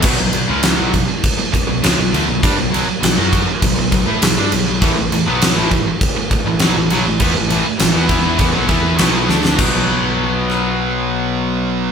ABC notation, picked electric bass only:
X:1
M:4/4
L:1/16
Q:1/4=100
K:Bm
V:1 name="Picked electric bass" clef=bass
B,,, B,,, B,,, C,,2 B,,, B,,, z4 B,,, C,, B,,, D,, B,,, | G,, B,,, B,,, z B,,, F,,2 z B,,, B,,, B,,, A,, B,,, G,, B,,, B,,, | A,,, A,,, A,,, B,,,2 A,,, A,,, z4 A,,, B,,, A,,, B,,, A,,, | E,, A,,, A,,, z A,,, E,, E,,2 E,, B,,, E,,2 B,,,2 D,,2 |
B,,,16 |]